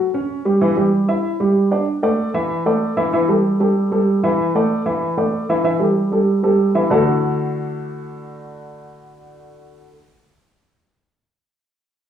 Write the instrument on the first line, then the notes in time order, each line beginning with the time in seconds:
grand piano
0.14 C#4 C#5
0.45 G3 G4
0.61 E3 E4
0.77 G3 G4
1.08 E4 E5
1.40 G3 G4
1.71 D4 D5
2.03 A3 A4 D5
2.34 E3 E4 E5
2.66 A3 A4 D5
2.97 E3 E4 E5
3.13 E3 E4 E5
3.29 G3 G4 A4
3.60 G3 G4 A4
3.91 G3 G4 A4
4.23 E3 E4 E5
4.55 A3 A4 D5
4.86 E3 E4 E5
5.17 A3 A4 D5
5.49 E3 E4 E5
5.64 E3 E4 E5
5.80 G3 G4 A4
6.12 G3 G4 A4
6.43 G3 G4 A4
6.75 E3 E4 E5
6.90 D3 A3 D4 E4 F#4 A4